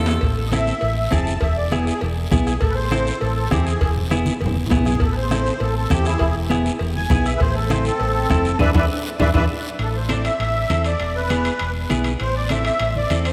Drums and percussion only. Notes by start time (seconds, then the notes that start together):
0.06 bombo rim, low timbale, short guiro
0.21 bombo low, cowbell, long guiro
0.52 bombo rim, high conga, short guiro
0.67 short guiro
0.81 cowbell, long guiro
1.12 bombo low, bombo rim, high conga, short guiro
1.27 short guiro
1.41 bombo low, cowbell, long guiro
1.71 bombo rim, high conga, short guiro
1.87 short guiro
2.01 cowbell, long guiro
2.31 bombo low, bombo rim, high conga, low conga, short guiro
2.47 bombo rim, short guiro
2.61 bombo low, cowbell, long guiro
2.91 bombo rim, high conga, short guiro
3.07 short guiro
3.21 cowbell, long guiro
3.51 bombo low, bombo rim, high conga, short guiro
3.67 short guiro
3.81 bombo low, cowbell, long guiro
3.96 low conga
4.11 bombo rim, high conga, short guiro
4.26 high conga, short guiro
4.41 cowbell, long guiro
4.46 low conga
4.56 high conga
4.66 low conga, low timbale
4.71 bombo low, bombo rim, short guiro
4.76 low conga
4.85 bombo rim, low conga, short guiro
4.95 low conga
5.00 bombo low, cowbell, long guiro
5.31 bombo rim, high conga, short guiro
5.46 short guiro
5.60 cowbell, long guiro
5.90 bombo low, bombo rim, high conga, short guiro
6.05 bombo rim, short guiro
6.19 bombo low, cowbell, long guiro
6.50 bombo rim, high conga, short guiro
6.66 short guiro
6.79 cowbell, long guiro
6.95 high conga
7.10 bombo low, bombo rim, high conga, low conga, short guiro
7.26 bombo rim, short guiro
7.40 bombo low, cowbell, long guiro
7.70 bombo rim, high conga, short guiro
7.85 short guiro
8.00 cowbell, long guiro
8.30 bombo low, bombo rim, high conga, short guiro
8.45 short guiro
8.59 bombo low, low conga, high timbale, long guiro
8.74 bombo low, low conga, high timbale, long guiro
9.20 bombo low, low conga, high timbale, long guiro
9.34 bombo low, low conga, high timbale, long guiro
9.79 high timbale, long guiro
10.09 high conga, high timbale, short guiro
10.25 high timbale, short guiro
10.40 high timbale, long guiro
10.70 high conga, high timbale, short guiro
10.84 high timbale, short guiro
11.00 high timbale, long guiro
11.30 high conga, high timbale, short guiro
11.45 high timbale, short guiro
11.59 high timbale, long guiro
11.90 high conga, high timbale, short guiro
12.04 high timbale, short guiro
12.20 high timbale, long guiro
12.49 high conga, high timbale, short guiro
12.65 high timbale, short guiro
12.79 high timbale, long guiro
12.95 high conga
13.10 high conga, high timbale, short guiro
13.25 high timbale, short guiro